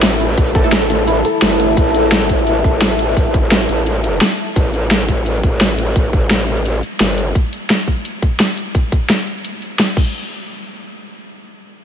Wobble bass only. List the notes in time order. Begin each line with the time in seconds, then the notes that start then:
Already playing: A1
0.38 A1
1.42 G1
1.77 A1
2.64 A1
3.17 A1
3.69 A1
4.56 A1
5.43 A1
5.96 A1
7.00 G1